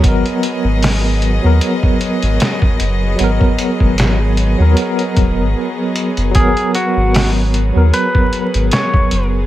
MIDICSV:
0, 0, Header, 1, 6, 480
1, 0, Start_track
1, 0, Key_signature, 5, "minor"
1, 0, Tempo, 789474
1, 21, Time_signature, 4, 2, 24, 8
1, 5755, End_track
2, 0, Start_track
2, 0, Title_t, "Electric slide guitar"
2, 0, Program_c, 0, 29
2, 3863, Note_on_c, 0, 68, 99
2, 4080, Note_off_c, 0, 68, 0
2, 4105, Note_on_c, 0, 66, 100
2, 4435, Note_off_c, 0, 66, 0
2, 4826, Note_on_c, 0, 71, 99
2, 5260, Note_off_c, 0, 71, 0
2, 5306, Note_on_c, 0, 73, 87
2, 5636, Note_off_c, 0, 73, 0
2, 5755, End_track
3, 0, Start_track
3, 0, Title_t, "String section"
3, 0, Program_c, 1, 48
3, 0, Note_on_c, 1, 54, 73
3, 0, Note_on_c, 1, 59, 68
3, 0, Note_on_c, 1, 68, 71
3, 23, Note_on_c, 1, 75, 84
3, 3864, Note_off_c, 1, 75, 0
3, 5755, Note_off_c, 1, 54, 0
3, 5755, Note_off_c, 1, 59, 0
3, 5755, Note_off_c, 1, 68, 0
3, 5755, End_track
4, 0, Start_track
4, 0, Title_t, "Tine electric piano"
4, 0, Program_c, 2, 4
4, 0, Control_c, 2, 64, 127
4, 0, Note_on_c, 2, 54, 90
4, 0, Note_on_c, 2, 59, 73
4, 0, Note_on_c, 2, 70, 82
4, 24, Note_off_c, 2, 59, 0
4, 24, Note_on_c, 2, 59, 82
4, 51, Note_off_c, 2, 70, 0
4, 51, Note_on_c, 2, 70, 97
4, 829, Note_off_c, 2, 54, 0
4, 842, Note_off_c, 2, 59, 0
4, 856, Note_off_c, 2, 70, 0
4, 862, Note_on_c, 2, 54, 81
4, 876, Note_on_c, 2, 59, 71
4, 889, Note_on_c, 2, 70, 82
4, 974, Note_off_c, 2, 54, 0
4, 981, Note_off_c, 2, 59, 0
4, 987, Note_off_c, 2, 70, 0
4, 1917, Note_on_c, 2, 54, 91
4, 1945, Note_on_c, 2, 59, 85
4, 1969, Note_on_c, 2, 70, 96
4, 2749, Note_off_c, 2, 54, 0
4, 2763, Note_off_c, 2, 59, 0
4, 2775, Note_off_c, 2, 70, 0
4, 2784, Note_on_c, 2, 54, 77
4, 2796, Note_on_c, 2, 59, 69
4, 2809, Note_on_c, 2, 70, 85
4, 2868, Note_off_c, 2, 54, 0
4, 2875, Note_on_c, 2, 54, 75
4, 2877, Note_off_c, 2, 59, 0
4, 2883, Note_off_c, 2, 70, 0
4, 2903, Note_on_c, 2, 59, 67
4, 2930, Note_on_c, 2, 70, 84
4, 3822, Note_off_c, 2, 54, 0
4, 3836, Note_off_c, 2, 59, 0
4, 3837, Note_on_c, 2, 54, 92
4, 3849, Note_off_c, 2, 70, 0
4, 3862, Note_on_c, 2, 59, 82
4, 3890, Note_on_c, 2, 70, 98
4, 4669, Note_off_c, 2, 54, 0
4, 4681, Note_off_c, 2, 59, 0
4, 4695, Note_off_c, 2, 70, 0
4, 4702, Note_on_c, 2, 54, 75
4, 4714, Note_on_c, 2, 59, 67
4, 4726, Note_on_c, 2, 70, 86
4, 4813, Note_off_c, 2, 54, 0
4, 4819, Note_off_c, 2, 59, 0
4, 4826, Note_off_c, 2, 70, 0
4, 5755, End_track
5, 0, Start_track
5, 0, Title_t, "Analog synth bass"
5, 0, Program_c, 3, 38
5, 23, Note_on_c, 3, 32, 97
5, 138, Note_off_c, 3, 32, 0
5, 391, Note_on_c, 3, 32, 103
5, 846, Note_off_c, 3, 32, 0
5, 878, Note_on_c, 3, 39, 97
5, 971, Note_off_c, 3, 39, 0
5, 1356, Note_on_c, 3, 32, 105
5, 1450, Note_off_c, 3, 32, 0
5, 1704, Note_on_c, 3, 30, 100
5, 1917, Note_off_c, 3, 30, 0
5, 1946, Note_on_c, 3, 32, 92
5, 2059, Note_off_c, 3, 32, 0
5, 2315, Note_on_c, 3, 32, 104
5, 2768, Note_off_c, 3, 32, 0
5, 2794, Note_on_c, 3, 39, 99
5, 2889, Note_off_c, 3, 39, 0
5, 3143, Note_on_c, 3, 27, 99
5, 3276, Note_on_c, 3, 32, 104
5, 3285, Note_off_c, 3, 27, 0
5, 3370, Note_off_c, 3, 32, 0
5, 3755, Note_on_c, 3, 30, 95
5, 3849, Note_off_c, 3, 30, 0
5, 3863, Note_on_c, 3, 32, 97
5, 3977, Note_off_c, 3, 32, 0
5, 4237, Note_on_c, 3, 32, 97
5, 4690, Note_off_c, 3, 32, 0
5, 4717, Note_on_c, 3, 39, 103
5, 4810, Note_off_c, 3, 39, 0
5, 5197, Note_on_c, 3, 32, 106
5, 5290, Note_off_c, 3, 32, 0
5, 5545, Note_on_c, 3, 30, 96
5, 5755, Note_off_c, 3, 30, 0
5, 5755, End_track
6, 0, Start_track
6, 0, Title_t, "Drums"
6, 22, Note_on_c, 9, 36, 111
6, 24, Note_on_c, 9, 42, 90
6, 83, Note_off_c, 9, 36, 0
6, 85, Note_off_c, 9, 42, 0
6, 155, Note_on_c, 9, 42, 41
6, 216, Note_off_c, 9, 42, 0
6, 262, Note_on_c, 9, 42, 72
6, 323, Note_off_c, 9, 42, 0
6, 502, Note_on_c, 9, 46, 87
6, 512, Note_on_c, 9, 38, 115
6, 563, Note_off_c, 9, 46, 0
6, 573, Note_off_c, 9, 38, 0
6, 742, Note_on_c, 9, 42, 63
6, 803, Note_off_c, 9, 42, 0
6, 981, Note_on_c, 9, 42, 92
6, 1042, Note_off_c, 9, 42, 0
6, 1113, Note_on_c, 9, 36, 89
6, 1173, Note_off_c, 9, 36, 0
6, 1220, Note_on_c, 9, 42, 68
6, 1281, Note_off_c, 9, 42, 0
6, 1352, Note_on_c, 9, 42, 45
6, 1413, Note_off_c, 9, 42, 0
6, 1460, Note_on_c, 9, 42, 85
6, 1470, Note_on_c, 9, 38, 117
6, 1521, Note_off_c, 9, 42, 0
6, 1531, Note_off_c, 9, 38, 0
6, 1593, Note_on_c, 9, 36, 100
6, 1653, Note_off_c, 9, 36, 0
6, 1701, Note_on_c, 9, 42, 68
6, 1762, Note_off_c, 9, 42, 0
6, 1939, Note_on_c, 9, 42, 93
6, 2000, Note_off_c, 9, 42, 0
6, 2072, Note_on_c, 9, 36, 94
6, 2133, Note_off_c, 9, 36, 0
6, 2180, Note_on_c, 9, 42, 67
6, 2240, Note_off_c, 9, 42, 0
6, 2312, Note_on_c, 9, 36, 97
6, 2373, Note_off_c, 9, 36, 0
6, 2419, Note_on_c, 9, 42, 91
6, 2430, Note_on_c, 9, 38, 114
6, 2480, Note_off_c, 9, 42, 0
6, 2490, Note_off_c, 9, 38, 0
6, 2659, Note_on_c, 9, 42, 70
6, 2720, Note_off_c, 9, 42, 0
6, 2899, Note_on_c, 9, 42, 89
6, 2960, Note_off_c, 9, 42, 0
6, 3033, Note_on_c, 9, 42, 40
6, 3094, Note_off_c, 9, 42, 0
6, 3141, Note_on_c, 9, 42, 66
6, 3142, Note_on_c, 9, 36, 94
6, 3201, Note_off_c, 9, 42, 0
6, 3203, Note_off_c, 9, 36, 0
6, 3621, Note_on_c, 9, 42, 66
6, 3682, Note_off_c, 9, 42, 0
6, 3753, Note_on_c, 9, 42, 45
6, 3813, Note_off_c, 9, 42, 0
6, 3859, Note_on_c, 9, 42, 87
6, 3861, Note_on_c, 9, 36, 107
6, 3920, Note_off_c, 9, 42, 0
6, 3922, Note_off_c, 9, 36, 0
6, 3994, Note_on_c, 9, 42, 42
6, 4055, Note_off_c, 9, 42, 0
6, 4102, Note_on_c, 9, 42, 69
6, 4162, Note_off_c, 9, 42, 0
6, 4344, Note_on_c, 9, 46, 86
6, 4354, Note_on_c, 9, 38, 119
6, 4405, Note_off_c, 9, 46, 0
6, 4415, Note_off_c, 9, 38, 0
6, 4584, Note_on_c, 9, 42, 68
6, 4645, Note_off_c, 9, 42, 0
6, 4825, Note_on_c, 9, 42, 98
6, 4886, Note_off_c, 9, 42, 0
6, 4954, Note_on_c, 9, 36, 85
6, 5015, Note_off_c, 9, 36, 0
6, 5063, Note_on_c, 9, 42, 63
6, 5124, Note_off_c, 9, 42, 0
6, 5194, Note_on_c, 9, 42, 48
6, 5255, Note_off_c, 9, 42, 0
6, 5299, Note_on_c, 9, 42, 94
6, 5309, Note_on_c, 9, 38, 116
6, 5360, Note_off_c, 9, 42, 0
6, 5370, Note_off_c, 9, 38, 0
6, 5433, Note_on_c, 9, 36, 98
6, 5494, Note_off_c, 9, 36, 0
6, 5540, Note_on_c, 9, 42, 67
6, 5601, Note_off_c, 9, 42, 0
6, 5755, End_track
0, 0, End_of_file